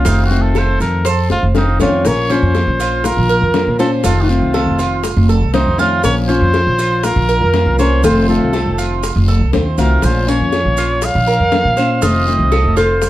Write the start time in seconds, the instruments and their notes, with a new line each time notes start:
0.05 upright bass F1, steel-string acoustic guitar C3 D#3 A3 C4 F4, trumpet D#4, cuban tres F4, high bongo, long guiro, maracas
0.25 trumpet F#4
0.30 steel-string acoustic guitar D#3 A3 C4 F4, maracas
0.42 trumpet A4
0.54 steel-string acoustic guitar D#3 A3 C4 F4, cuban tres A4, trumpet C5, high bongo, short guiro, maracas
0.80 upright bass F2, trumpet A#4, high bongo, short guiro, maracas
1.05 cuban tres C5, muted steel-string acoustic guitar stroke, high bongo, long guiro, maracas
1.09 trumpet A4
1.30 upright bass F1, trumpet F4, high bongo, maracas
1.43 upright bass F1
1.54 steel-string acoustic guitar D#3 A3 C4 F4, nylon-string guitar C4, trumpet D#4, cuban tres F5, low bongo, short guiro, maracas
1.80 upright bass F2, steel-string acoustic guitar D#3 A3 C4 F4, nylon-string guitar C#4, trumpet F4, cuban tres C#5, low bongo, short guiro, maracas
2.05 upright bass A#1, steel-string acoustic guitar F3 A#3 C#4 F4, nylon-string guitar A#4, trumpet C#5, high bongo, long guiro, maracas
2.30 steel-string acoustic guitar A#3 C#4 F4, cuban tres C#4, nylon-string guitar F4, trumpet C5, maracas
2.42 upright bass F2
2.54 steel-string acoustic guitar F3 A#3 C#4 F4, high bongo, short guiro, maracas
2.67 upright bass A#1
2.79 cuban tres F4, high bongo, short guiro, maracas
3.04 nylon-string guitar F4, trumpet A#4, muted steel-string acoustic guitar stroke, high bongo, long guiro, maracas
3.17 upright bass A#1
3.29 cuban tres A#4, high bongo, maracas
3.42 upright bass F2
3.54 steel-string acoustic guitar F3 A#3 C#4 F4, high bongo, low bongo, short guiro, maracas
3.67 upright bass A#2
3.79 steel-string acoustic guitar A#3 C#4 F4, nylon-string guitar F4, trumpet A4, cuban tres C5, high bongo, short guiro, maracas
4.04 upright bass F1, steel-string acoustic guitar C3 D#3 A3 C4 F4, cuban tres F4, nylon-string guitar F4, trumpet A4, high bongo, long guiro, maracas
4.22 nylon-string guitar D#4, trumpet F#4
4.29 steel-string acoustic guitar D#3 A3 C4 F4, nylon-string guitar C4, trumpet F4, maracas
4.42 upright bass C2
4.53 steel-string acoustic guitar D#3 A3 C4 F4, cuban tres A4, high bongo, short guiro, maracas
4.66 upright bass F1
4.79 cuban tres F4, high bongo, short guiro, maracas
5.03 muted steel-string acoustic guitar stroke, high bongo, long guiro, maracas
5.17 upright bass F1
5.29 cuban tres A4, high bongo, maracas
5.41 upright bass C2
5.53 steel-string acoustic guitar D#3 A3 C4 F4, nylon-string guitar C4, trumpet D#4, cuban tres C5, high bongo, low bongo, short guiro, maracas
5.66 upright bass F2
5.78 steel-string acoustic guitar D#3 A3 C4 F4, nylon-string guitar C#4, trumpet F4, cuban tres F5, short guiro, maracas
6.03 upright bass A#1, steel-string acoustic guitar F3 A#3 C#4 F4, nylon-string guitar A#4, trumpet C#5, high bongo, long guiro, maracas
6.28 steel-string acoustic guitar A#3 C#4 F4, cuban tres C#4, nylon-string guitar F4, trumpet C5, maracas
6.41 upright bass F2
6.53 steel-string acoustic guitar F3 A#3 C#4 F4, high bongo, short guiro, maracas
6.67 upright bass A#1
6.79 cuban tres F4, high bongo, short guiro, maracas
7.03 nylon-string guitar F4, trumpet A#4, muted steel-string acoustic guitar stroke, high bongo, long guiro, maracas
7.16 upright bass A#1
7.29 cuban tres A#4, high bongo, maracas
7.41 upright bass F2
7.53 steel-string acoustic guitar F3 A#3 C#4 F4, high bongo, low bongo, short guiro, maracas
7.66 upright bass C2
7.78 steel-string acoustic guitar A#3 C#4 F4, nylon-string guitar A#4, cuban tres C5, trumpet C#5, high bongo, short guiro, maracas
8.03 upright bass F1, steel-string acoustic guitar C3 D#3 A3 C4 F4, cuban tres F4, nylon-string guitar A4, trumpet C5, high bongo, long guiro, maracas
8.28 steel-string acoustic guitar D#3 A3 C4 F4, nylon-string guitar F4, trumpet A4, maracas
8.41 upright bass C2
8.53 steel-string acoustic guitar D#3 A3 C4 F4, cuban tres A4, high bongo, short guiro, maracas
8.66 upright bass F1
8.78 cuban tres F4, high bongo, short guiro, maracas
9.03 muted steel-string acoustic guitar stroke, high bongo, long guiro, maracas
9.16 upright bass F1
9.28 cuban tres A4, high bongo, maracas
9.41 upright bass C2
9.53 upright bass D#2, steel-string acoustic guitar D#3 A3 C4 F4, cuban tres C5, high bongo, low bongo, short guiro, maracas
9.78 upright bass C2, steel-string acoustic guitar D#3 A3 C4 F4, nylon-string guitar F#4, trumpet A#4, cuban tres F5, short guiro, maracas
10.02 upright bass A#1, steel-string acoustic guitar F3 A#3 C#4 F4, nylon-string guitar F4, trumpet C5, high bongo, long guiro, maracas
10.27 steel-string acoustic guitar A#3 C#4 F4, nylon-string guitar A#4, cuban tres C#5, trumpet C#5, maracas
10.40 upright bass F2
10.52 steel-string acoustic guitar F3 A#3 C#4 F4, high bongo, short guiro, maracas
10.65 upright bass A#1
10.77 cuban tres F4, high bongo, short guiro, maracas
11.02 nylon-string guitar C#5, trumpet F5, muted steel-string acoustic guitar stroke, high bongo, long guiro, maracas
11.15 upright bass A#1
11.27 cuban tres A#4, high bongo, maracas
11.40 upright bass F2
11.51 steel-string acoustic guitar F3 A#3 C#4 F4, high bongo, low bongo, short guiro, maracas
11.65 upright bass A#2
11.76 steel-string acoustic guitar A#3 C#4 F4, cuban tres C5, high bongo, short guiro, maracas
12.01 upright bass F1, steel-string acoustic guitar C3 D#3 A3 C4 F4, cuban tres F4, nylon-string guitar C5, trumpet D#5, high bongo, long guiro, maracas
12.27 steel-string acoustic guitar D#3 A3 C4 F4, maracas
12.39 upright bass C2
12.51 steel-string acoustic guitar D#3 A3 C4 F4, cuban tres A4, high bongo, short guiro, maracas
12.64 upright bass F1
12.76 cuban tres F4, nylon-string guitar A4, trumpet C5, high bongo, short guiro, maracas
13.01 muted steel-string acoustic guitar stroke, high bongo, long guiro, maracas